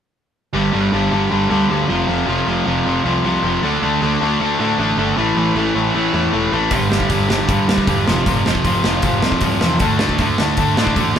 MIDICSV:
0, 0, Header, 1, 4, 480
1, 0, Start_track
1, 0, Tempo, 386100
1, 675, Time_signature, 4, 2, 24, 8
1, 13911, End_track
2, 0, Start_track
2, 0, Title_t, "Distorted electric guitar"
2, 0, Program_c, 0, 30
2, 661, Note_on_c, 0, 43, 87
2, 662, Note_on_c, 0, 50, 90
2, 665, Note_on_c, 0, 55, 87
2, 892, Note_off_c, 0, 43, 0
2, 904, Note_off_c, 0, 50, 0
2, 907, Note_on_c, 0, 43, 74
2, 908, Note_off_c, 0, 55, 0
2, 919, Note_on_c, 0, 50, 71
2, 922, Note_on_c, 0, 55, 82
2, 1134, Note_off_c, 0, 43, 0
2, 1138, Note_off_c, 0, 50, 0
2, 1144, Note_off_c, 0, 55, 0
2, 1149, Note_on_c, 0, 43, 74
2, 1153, Note_on_c, 0, 50, 78
2, 1159, Note_on_c, 0, 55, 82
2, 1386, Note_off_c, 0, 43, 0
2, 1393, Note_off_c, 0, 55, 0
2, 1394, Note_off_c, 0, 50, 0
2, 1401, Note_on_c, 0, 43, 99
2, 1408, Note_on_c, 0, 55, 98
2, 1409, Note_on_c, 0, 50, 93
2, 1599, Note_off_c, 0, 43, 0
2, 1603, Note_off_c, 0, 50, 0
2, 1613, Note_off_c, 0, 55, 0
2, 1614, Note_on_c, 0, 43, 73
2, 1618, Note_on_c, 0, 50, 80
2, 1628, Note_on_c, 0, 55, 85
2, 1837, Note_off_c, 0, 50, 0
2, 1838, Note_off_c, 0, 43, 0
2, 1844, Note_off_c, 0, 55, 0
2, 1852, Note_on_c, 0, 43, 80
2, 1852, Note_on_c, 0, 50, 77
2, 1859, Note_on_c, 0, 55, 88
2, 2094, Note_off_c, 0, 43, 0
2, 2099, Note_off_c, 0, 50, 0
2, 2106, Note_off_c, 0, 55, 0
2, 2109, Note_on_c, 0, 43, 92
2, 2114, Note_on_c, 0, 50, 86
2, 2121, Note_on_c, 0, 55, 90
2, 2333, Note_off_c, 0, 43, 0
2, 2338, Note_on_c, 0, 41, 89
2, 2339, Note_off_c, 0, 50, 0
2, 2342, Note_off_c, 0, 55, 0
2, 2344, Note_on_c, 0, 48, 95
2, 2347, Note_on_c, 0, 53, 94
2, 2562, Note_off_c, 0, 41, 0
2, 2569, Note_off_c, 0, 53, 0
2, 2571, Note_off_c, 0, 48, 0
2, 2577, Note_on_c, 0, 41, 78
2, 2584, Note_on_c, 0, 53, 99
2, 2585, Note_on_c, 0, 48, 99
2, 2799, Note_off_c, 0, 41, 0
2, 2810, Note_off_c, 0, 48, 0
2, 2814, Note_on_c, 0, 41, 75
2, 2817, Note_off_c, 0, 53, 0
2, 2825, Note_on_c, 0, 48, 84
2, 2832, Note_on_c, 0, 53, 86
2, 3055, Note_off_c, 0, 48, 0
2, 3058, Note_off_c, 0, 41, 0
2, 3064, Note_off_c, 0, 53, 0
2, 3070, Note_on_c, 0, 48, 88
2, 3073, Note_on_c, 0, 41, 77
2, 3079, Note_on_c, 0, 53, 88
2, 3288, Note_off_c, 0, 41, 0
2, 3294, Note_off_c, 0, 48, 0
2, 3296, Note_off_c, 0, 53, 0
2, 3303, Note_on_c, 0, 41, 91
2, 3309, Note_on_c, 0, 48, 92
2, 3311, Note_on_c, 0, 53, 107
2, 3527, Note_off_c, 0, 41, 0
2, 3536, Note_off_c, 0, 48, 0
2, 3538, Note_off_c, 0, 53, 0
2, 3542, Note_on_c, 0, 41, 70
2, 3550, Note_on_c, 0, 48, 87
2, 3553, Note_on_c, 0, 53, 76
2, 3775, Note_off_c, 0, 41, 0
2, 3782, Note_off_c, 0, 48, 0
2, 3789, Note_off_c, 0, 53, 0
2, 3790, Note_on_c, 0, 41, 70
2, 3797, Note_on_c, 0, 48, 78
2, 3804, Note_on_c, 0, 53, 93
2, 4025, Note_off_c, 0, 41, 0
2, 4036, Note_off_c, 0, 48, 0
2, 4039, Note_off_c, 0, 53, 0
2, 4040, Note_on_c, 0, 41, 76
2, 4051, Note_on_c, 0, 48, 86
2, 4054, Note_on_c, 0, 53, 96
2, 4255, Note_off_c, 0, 41, 0
2, 4267, Note_off_c, 0, 48, 0
2, 4270, Note_on_c, 0, 41, 84
2, 4276, Note_off_c, 0, 53, 0
2, 4282, Note_on_c, 0, 48, 88
2, 4291, Note_on_c, 0, 53, 93
2, 4496, Note_off_c, 0, 41, 0
2, 4502, Note_off_c, 0, 48, 0
2, 4507, Note_off_c, 0, 53, 0
2, 4525, Note_on_c, 0, 50, 91
2, 4528, Note_on_c, 0, 57, 79
2, 4535, Note_on_c, 0, 62, 93
2, 4750, Note_off_c, 0, 50, 0
2, 4755, Note_off_c, 0, 62, 0
2, 4761, Note_off_c, 0, 57, 0
2, 4764, Note_on_c, 0, 50, 81
2, 4766, Note_on_c, 0, 57, 85
2, 4770, Note_on_c, 0, 62, 83
2, 4994, Note_off_c, 0, 50, 0
2, 4998, Note_off_c, 0, 62, 0
2, 5009, Note_on_c, 0, 50, 72
2, 5011, Note_off_c, 0, 57, 0
2, 5013, Note_on_c, 0, 62, 99
2, 5016, Note_on_c, 0, 57, 82
2, 5230, Note_off_c, 0, 50, 0
2, 5245, Note_off_c, 0, 62, 0
2, 5245, Note_on_c, 0, 50, 91
2, 5247, Note_off_c, 0, 57, 0
2, 5252, Note_on_c, 0, 57, 88
2, 5260, Note_on_c, 0, 62, 105
2, 5457, Note_off_c, 0, 50, 0
2, 5459, Note_off_c, 0, 57, 0
2, 5464, Note_off_c, 0, 62, 0
2, 5472, Note_on_c, 0, 50, 82
2, 5474, Note_on_c, 0, 57, 84
2, 5479, Note_on_c, 0, 62, 86
2, 5695, Note_off_c, 0, 50, 0
2, 5700, Note_off_c, 0, 57, 0
2, 5707, Note_off_c, 0, 62, 0
2, 5710, Note_on_c, 0, 50, 73
2, 5715, Note_on_c, 0, 57, 89
2, 5722, Note_on_c, 0, 62, 91
2, 5943, Note_off_c, 0, 50, 0
2, 5948, Note_off_c, 0, 57, 0
2, 5958, Note_off_c, 0, 62, 0
2, 5958, Note_on_c, 0, 50, 90
2, 5963, Note_on_c, 0, 57, 86
2, 5972, Note_on_c, 0, 62, 90
2, 6181, Note_off_c, 0, 50, 0
2, 6183, Note_off_c, 0, 57, 0
2, 6183, Note_off_c, 0, 62, 0
2, 6196, Note_on_c, 0, 50, 93
2, 6197, Note_on_c, 0, 57, 81
2, 6198, Note_on_c, 0, 62, 90
2, 6419, Note_off_c, 0, 50, 0
2, 6420, Note_off_c, 0, 57, 0
2, 6420, Note_off_c, 0, 62, 0
2, 6426, Note_on_c, 0, 45, 77
2, 6436, Note_on_c, 0, 57, 104
2, 6437, Note_on_c, 0, 52, 84
2, 6663, Note_off_c, 0, 45, 0
2, 6667, Note_off_c, 0, 52, 0
2, 6675, Note_off_c, 0, 57, 0
2, 6678, Note_on_c, 0, 45, 75
2, 6682, Note_on_c, 0, 52, 68
2, 6690, Note_on_c, 0, 57, 77
2, 6894, Note_off_c, 0, 45, 0
2, 6902, Note_off_c, 0, 57, 0
2, 6905, Note_off_c, 0, 52, 0
2, 6909, Note_on_c, 0, 45, 78
2, 6917, Note_on_c, 0, 57, 79
2, 6920, Note_on_c, 0, 52, 73
2, 7131, Note_off_c, 0, 45, 0
2, 7137, Note_off_c, 0, 57, 0
2, 7138, Note_off_c, 0, 52, 0
2, 7146, Note_on_c, 0, 45, 84
2, 7152, Note_on_c, 0, 57, 102
2, 7153, Note_on_c, 0, 52, 92
2, 7377, Note_off_c, 0, 45, 0
2, 7381, Note_off_c, 0, 57, 0
2, 7383, Note_off_c, 0, 52, 0
2, 7392, Note_on_c, 0, 45, 71
2, 7396, Note_on_c, 0, 57, 76
2, 7398, Note_on_c, 0, 52, 77
2, 7621, Note_off_c, 0, 45, 0
2, 7628, Note_off_c, 0, 52, 0
2, 7634, Note_off_c, 0, 57, 0
2, 7636, Note_on_c, 0, 45, 75
2, 7643, Note_on_c, 0, 52, 78
2, 7649, Note_on_c, 0, 57, 89
2, 7842, Note_off_c, 0, 45, 0
2, 7851, Note_off_c, 0, 52, 0
2, 7857, Note_off_c, 0, 57, 0
2, 7857, Note_on_c, 0, 45, 80
2, 7866, Note_on_c, 0, 52, 79
2, 7872, Note_on_c, 0, 57, 86
2, 8085, Note_off_c, 0, 45, 0
2, 8088, Note_off_c, 0, 52, 0
2, 8098, Note_off_c, 0, 57, 0
2, 8100, Note_on_c, 0, 45, 76
2, 8103, Note_on_c, 0, 52, 83
2, 8113, Note_on_c, 0, 57, 85
2, 8331, Note_off_c, 0, 45, 0
2, 8332, Note_off_c, 0, 52, 0
2, 8338, Note_off_c, 0, 57, 0
2, 8338, Note_on_c, 0, 43, 82
2, 8345, Note_on_c, 0, 50, 94
2, 8347, Note_on_c, 0, 55, 91
2, 8558, Note_off_c, 0, 43, 0
2, 8562, Note_off_c, 0, 50, 0
2, 8566, Note_off_c, 0, 55, 0
2, 8573, Note_on_c, 0, 43, 65
2, 8577, Note_on_c, 0, 50, 68
2, 8581, Note_on_c, 0, 55, 80
2, 8811, Note_off_c, 0, 43, 0
2, 8814, Note_off_c, 0, 55, 0
2, 8815, Note_off_c, 0, 50, 0
2, 8826, Note_on_c, 0, 43, 78
2, 8829, Note_on_c, 0, 55, 84
2, 8830, Note_on_c, 0, 50, 75
2, 9038, Note_off_c, 0, 43, 0
2, 9046, Note_off_c, 0, 50, 0
2, 9053, Note_on_c, 0, 43, 83
2, 9054, Note_off_c, 0, 55, 0
2, 9061, Note_on_c, 0, 50, 94
2, 9069, Note_on_c, 0, 55, 98
2, 9281, Note_off_c, 0, 43, 0
2, 9288, Note_off_c, 0, 50, 0
2, 9296, Note_on_c, 0, 43, 69
2, 9297, Note_off_c, 0, 55, 0
2, 9303, Note_on_c, 0, 50, 81
2, 9312, Note_on_c, 0, 55, 78
2, 9538, Note_off_c, 0, 43, 0
2, 9538, Note_off_c, 0, 50, 0
2, 9546, Note_off_c, 0, 55, 0
2, 9553, Note_on_c, 0, 43, 84
2, 9553, Note_on_c, 0, 50, 91
2, 9561, Note_on_c, 0, 55, 86
2, 9783, Note_off_c, 0, 43, 0
2, 9788, Note_off_c, 0, 50, 0
2, 9792, Note_off_c, 0, 55, 0
2, 9798, Note_on_c, 0, 43, 95
2, 9803, Note_on_c, 0, 50, 86
2, 9807, Note_on_c, 0, 55, 94
2, 10020, Note_off_c, 0, 43, 0
2, 10023, Note_off_c, 0, 50, 0
2, 10025, Note_off_c, 0, 55, 0
2, 10043, Note_on_c, 0, 41, 95
2, 10051, Note_on_c, 0, 48, 108
2, 10056, Note_on_c, 0, 53, 110
2, 10268, Note_off_c, 0, 41, 0
2, 10270, Note_off_c, 0, 48, 0
2, 10281, Note_off_c, 0, 53, 0
2, 10283, Note_on_c, 0, 41, 77
2, 10285, Note_on_c, 0, 48, 93
2, 10296, Note_on_c, 0, 53, 94
2, 10511, Note_off_c, 0, 41, 0
2, 10517, Note_off_c, 0, 48, 0
2, 10525, Note_on_c, 0, 41, 82
2, 10526, Note_off_c, 0, 53, 0
2, 10532, Note_on_c, 0, 48, 73
2, 10540, Note_on_c, 0, 53, 81
2, 10745, Note_off_c, 0, 41, 0
2, 10752, Note_off_c, 0, 48, 0
2, 10753, Note_off_c, 0, 53, 0
2, 10760, Note_on_c, 0, 41, 79
2, 10767, Note_on_c, 0, 48, 78
2, 10768, Note_on_c, 0, 53, 77
2, 10981, Note_off_c, 0, 41, 0
2, 10987, Note_off_c, 0, 48, 0
2, 10992, Note_off_c, 0, 53, 0
2, 10996, Note_on_c, 0, 41, 81
2, 11002, Note_on_c, 0, 48, 82
2, 11007, Note_on_c, 0, 53, 92
2, 11216, Note_off_c, 0, 41, 0
2, 11224, Note_off_c, 0, 48, 0
2, 11225, Note_off_c, 0, 53, 0
2, 11231, Note_on_c, 0, 41, 73
2, 11239, Note_on_c, 0, 48, 83
2, 11240, Note_on_c, 0, 53, 76
2, 11452, Note_off_c, 0, 41, 0
2, 11461, Note_off_c, 0, 48, 0
2, 11467, Note_off_c, 0, 53, 0
2, 11467, Note_on_c, 0, 41, 77
2, 11476, Note_on_c, 0, 48, 90
2, 11482, Note_on_c, 0, 53, 96
2, 11703, Note_off_c, 0, 41, 0
2, 11707, Note_off_c, 0, 48, 0
2, 11711, Note_off_c, 0, 53, 0
2, 11718, Note_on_c, 0, 41, 96
2, 11722, Note_on_c, 0, 48, 85
2, 11726, Note_on_c, 0, 53, 94
2, 11937, Note_off_c, 0, 41, 0
2, 11944, Note_off_c, 0, 53, 0
2, 11945, Note_off_c, 0, 48, 0
2, 11952, Note_on_c, 0, 41, 88
2, 11959, Note_on_c, 0, 53, 98
2, 11960, Note_on_c, 0, 48, 84
2, 12178, Note_off_c, 0, 41, 0
2, 12182, Note_off_c, 0, 48, 0
2, 12182, Note_off_c, 0, 53, 0
2, 12197, Note_on_c, 0, 50, 83
2, 12205, Note_on_c, 0, 57, 83
2, 12211, Note_on_c, 0, 62, 94
2, 12431, Note_off_c, 0, 50, 0
2, 12438, Note_off_c, 0, 62, 0
2, 12444, Note_off_c, 0, 57, 0
2, 12445, Note_on_c, 0, 50, 68
2, 12449, Note_on_c, 0, 57, 81
2, 12453, Note_on_c, 0, 62, 80
2, 12673, Note_off_c, 0, 50, 0
2, 12680, Note_off_c, 0, 62, 0
2, 12688, Note_on_c, 0, 50, 75
2, 12694, Note_off_c, 0, 57, 0
2, 12695, Note_on_c, 0, 62, 89
2, 12699, Note_on_c, 0, 57, 84
2, 12929, Note_off_c, 0, 50, 0
2, 12932, Note_off_c, 0, 62, 0
2, 12937, Note_off_c, 0, 57, 0
2, 12942, Note_on_c, 0, 57, 100
2, 12944, Note_on_c, 0, 50, 85
2, 12947, Note_on_c, 0, 62, 108
2, 13164, Note_off_c, 0, 50, 0
2, 13164, Note_off_c, 0, 62, 0
2, 13175, Note_off_c, 0, 57, 0
2, 13179, Note_on_c, 0, 50, 83
2, 13179, Note_on_c, 0, 62, 82
2, 13180, Note_on_c, 0, 57, 75
2, 13378, Note_off_c, 0, 50, 0
2, 13390, Note_off_c, 0, 62, 0
2, 13393, Note_on_c, 0, 50, 77
2, 13396, Note_off_c, 0, 57, 0
2, 13401, Note_on_c, 0, 57, 83
2, 13405, Note_on_c, 0, 62, 98
2, 13623, Note_off_c, 0, 50, 0
2, 13638, Note_on_c, 0, 50, 93
2, 13639, Note_off_c, 0, 62, 0
2, 13641, Note_off_c, 0, 57, 0
2, 13646, Note_on_c, 0, 57, 96
2, 13654, Note_on_c, 0, 62, 97
2, 13860, Note_off_c, 0, 50, 0
2, 13876, Note_off_c, 0, 62, 0
2, 13881, Note_off_c, 0, 57, 0
2, 13911, End_track
3, 0, Start_track
3, 0, Title_t, "Picked electric bass"
3, 0, Program_c, 1, 34
3, 673, Note_on_c, 1, 31, 89
3, 852, Note_off_c, 1, 31, 0
3, 917, Note_on_c, 1, 31, 81
3, 1094, Note_off_c, 1, 31, 0
3, 1157, Note_on_c, 1, 31, 86
3, 1334, Note_off_c, 1, 31, 0
3, 1394, Note_on_c, 1, 31, 78
3, 1572, Note_off_c, 1, 31, 0
3, 1640, Note_on_c, 1, 31, 77
3, 1815, Note_off_c, 1, 31, 0
3, 1873, Note_on_c, 1, 38, 90
3, 2051, Note_off_c, 1, 38, 0
3, 2109, Note_on_c, 1, 38, 88
3, 2288, Note_off_c, 1, 38, 0
3, 2356, Note_on_c, 1, 29, 92
3, 2533, Note_off_c, 1, 29, 0
3, 2587, Note_on_c, 1, 29, 96
3, 2767, Note_off_c, 1, 29, 0
3, 2821, Note_on_c, 1, 29, 75
3, 3003, Note_off_c, 1, 29, 0
3, 3061, Note_on_c, 1, 29, 87
3, 3243, Note_off_c, 1, 29, 0
3, 3304, Note_on_c, 1, 29, 75
3, 3485, Note_off_c, 1, 29, 0
3, 3543, Note_on_c, 1, 29, 82
3, 3725, Note_off_c, 1, 29, 0
3, 3794, Note_on_c, 1, 36, 88
3, 3971, Note_off_c, 1, 36, 0
3, 4023, Note_on_c, 1, 36, 87
3, 4204, Note_off_c, 1, 36, 0
3, 4257, Note_on_c, 1, 29, 94
3, 4440, Note_off_c, 1, 29, 0
3, 4500, Note_on_c, 1, 38, 83
3, 4682, Note_off_c, 1, 38, 0
3, 4752, Note_on_c, 1, 38, 88
3, 4930, Note_off_c, 1, 38, 0
3, 4987, Note_on_c, 1, 38, 91
3, 5166, Note_off_c, 1, 38, 0
3, 5247, Note_on_c, 1, 38, 74
3, 5419, Note_off_c, 1, 38, 0
3, 5471, Note_on_c, 1, 38, 81
3, 5649, Note_off_c, 1, 38, 0
3, 5712, Note_on_c, 1, 45, 82
3, 5890, Note_off_c, 1, 45, 0
3, 5945, Note_on_c, 1, 33, 87
3, 6125, Note_off_c, 1, 33, 0
3, 6181, Note_on_c, 1, 31, 85
3, 6363, Note_off_c, 1, 31, 0
3, 6441, Note_on_c, 1, 33, 94
3, 6615, Note_off_c, 1, 33, 0
3, 6659, Note_on_c, 1, 33, 79
3, 6841, Note_off_c, 1, 33, 0
3, 6903, Note_on_c, 1, 33, 89
3, 7083, Note_off_c, 1, 33, 0
3, 7147, Note_on_c, 1, 33, 81
3, 7326, Note_off_c, 1, 33, 0
3, 7385, Note_on_c, 1, 33, 75
3, 7565, Note_off_c, 1, 33, 0
3, 7628, Note_on_c, 1, 40, 80
3, 7807, Note_off_c, 1, 40, 0
3, 7863, Note_on_c, 1, 28, 84
3, 8044, Note_off_c, 1, 28, 0
3, 8112, Note_on_c, 1, 33, 87
3, 8289, Note_off_c, 1, 33, 0
3, 8343, Note_on_c, 1, 31, 87
3, 8524, Note_off_c, 1, 31, 0
3, 8595, Note_on_c, 1, 31, 78
3, 8771, Note_off_c, 1, 31, 0
3, 8830, Note_on_c, 1, 31, 81
3, 9008, Note_off_c, 1, 31, 0
3, 9069, Note_on_c, 1, 31, 75
3, 9248, Note_off_c, 1, 31, 0
3, 9305, Note_on_c, 1, 31, 87
3, 9486, Note_off_c, 1, 31, 0
3, 9546, Note_on_c, 1, 38, 89
3, 9726, Note_off_c, 1, 38, 0
3, 9788, Note_on_c, 1, 28, 87
3, 9967, Note_off_c, 1, 28, 0
3, 10028, Note_on_c, 1, 29, 82
3, 10207, Note_off_c, 1, 29, 0
3, 10269, Note_on_c, 1, 29, 88
3, 10448, Note_off_c, 1, 29, 0
3, 10521, Note_on_c, 1, 29, 72
3, 10696, Note_off_c, 1, 29, 0
3, 10748, Note_on_c, 1, 29, 83
3, 10927, Note_off_c, 1, 29, 0
3, 10993, Note_on_c, 1, 29, 75
3, 11171, Note_off_c, 1, 29, 0
3, 11233, Note_on_c, 1, 29, 77
3, 11411, Note_off_c, 1, 29, 0
3, 11466, Note_on_c, 1, 36, 84
3, 11647, Note_off_c, 1, 36, 0
3, 11704, Note_on_c, 1, 36, 91
3, 11885, Note_off_c, 1, 36, 0
3, 11954, Note_on_c, 1, 40, 81
3, 12132, Note_off_c, 1, 40, 0
3, 12184, Note_on_c, 1, 38, 100
3, 12366, Note_off_c, 1, 38, 0
3, 12437, Note_on_c, 1, 38, 83
3, 12614, Note_off_c, 1, 38, 0
3, 12661, Note_on_c, 1, 38, 96
3, 12843, Note_off_c, 1, 38, 0
3, 12919, Note_on_c, 1, 38, 85
3, 13095, Note_off_c, 1, 38, 0
3, 13148, Note_on_c, 1, 38, 86
3, 13328, Note_off_c, 1, 38, 0
3, 13396, Note_on_c, 1, 45, 89
3, 13573, Note_off_c, 1, 45, 0
3, 13632, Note_on_c, 1, 33, 94
3, 13810, Note_off_c, 1, 33, 0
3, 13911, End_track
4, 0, Start_track
4, 0, Title_t, "Drums"
4, 8340, Note_on_c, 9, 46, 57
4, 8343, Note_on_c, 9, 36, 116
4, 8464, Note_off_c, 9, 46, 0
4, 8467, Note_off_c, 9, 36, 0
4, 8599, Note_on_c, 9, 38, 90
4, 8704, Note_on_c, 9, 36, 85
4, 8723, Note_off_c, 9, 38, 0
4, 8824, Note_off_c, 9, 36, 0
4, 8824, Note_on_c, 9, 36, 97
4, 8828, Note_on_c, 9, 46, 55
4, 8949, Note_off_c, 9, 36, 0
4, 8952, Note_off_c, 9, 46, 0
4, 9078, Note_on_c, 9, 38, 97
4, 9202, Note_off_c, 9, 38, 0
4, 9308, Note_on_c, 9, 36, 113
4, 9315, Note_on_c, 9, 46, 55
4, 9432, Note_off_c, 9, 36, 0
4, 9440, Note_off_c, 9, 46, 0
4, 9561, Note_on_c, 9, 38, 114
4, 9669, Note_on_c, 9, 36, 74
4, 9685, Note_off_c, 9, 38, 0
4, 9790, Note_off_c, 9, 36, 0
4, 9790, Note_on_c, 9, 36, 98
4, 9795, Note_on_c, 9, 46, 54
4, 9914, Note_off_c, 9, 36, 0
4, 9919, Note_off_c, 9, 46, 0
4, 10040, Note_on_c, 9, 38, 94
4, 10164, Note_off_c, 9, 38, 0
4, 10272, Note_on_c, 9, 36, 101
4, 10282, Note_on_c, 9, 46, 61
4, 10396, Note_off_c, 9, 36, 0
4, 10406, Note_off_c, 9, 46, 0
4, 10518, Note_on_c, 9, 38, 98
4, 10630, Note_on_c, 9, 36, 84
4, 10642, Note_off_c, 9, 38, 0
4, 10749, Note_off_c, 9, 36, 0
4, 10749, Note_on_c, 9, 36, 87
4, 10753, Note_on_c, 9, 46, 59
4, 10873, Note_off_c, 9, 36, 0
4, 10878, Note_off_c, 9, 46, 0
4, 10991, Note_on_c, 9, 38, 98
4, 11115, Note_off_c, 9, 38, 0
4, 11218, Note_on_c, 9, 46, 57
4, 11226, Note_on_c, 9, 36, 109
4, 11342, Note_off_c, 9, 46, 0
4, 11350, Note_off_c, 9, 36, 0
4, 11468, Note_on_c, 9, 38, 103
4, 11585, Note_on_c, 9, 36, 68
4, 11592, Note_off_c, 9, 38, 0
4, 11694, Note_on_c, 9, 46, 57
4, 11704, Note_off_c, 9, 36, 0
4, 11704, Note_on_c, 9, 36, 99
4, 11818, Note_off_c, 9, 46, 0
4, 11829, Note_off_c, 9, 36, 0
4, 11948, Note_on_c, 9, 38, 104
4, 12072, Note_off_c, 9, 38, 0
4, 12178, Note_on_c, 9, 46, 56
4, 12185, Note_on_c, 9, 36, 112
4, 12303, Note_off_c, 9, 46, 0
4, 12310, Note_off_c, 9, 36, 0
4, 12421, Note_on_c, 9, 38, 111
4, 12545, Note_off_c, 9, 38, 0
4, 12547, Note_on_c, 9, 36, 76
4, 12662, Note_on_c, 9, 46, 52
4, 12667, Note_off_c, 9, 36, 0
4, 12667, Note_on_c, 9, 36, 91
4, 12786, Note_off_c, 9, 46, 0
4, 12792, Note_off_c, 9, 36, 0
4, 12908, Note_on_c, 9, 38, 98
4, 13032, Note_off_c, 9, 38, 0
4, 13140, Note_on_c, 9, 46, 54
4, 13148, Note_on_c, 9, 36, 102
4, 13264, Note_off_c, 9, 46, 0
4, 13272, Note_off_c, 9, 36, 0
4, 13393, Note_on_c, 9, 38, 110
4, 13510, Note_on_c, 9, 36, 74
4, 13517, Note_off_c, 9, 38, 0
4, 13629, Note_off_c, 9, 36, 0
4, 13629, Note_on_c, 9, 36, 82
4, 13634, Note_on_c, 9, 46, 52
4, 13753, Note_off_c, 9, 36, 0
4, 13758, Note_off_c, 9, 46, 0
4, 13911, End_track
0, 0, End_of_file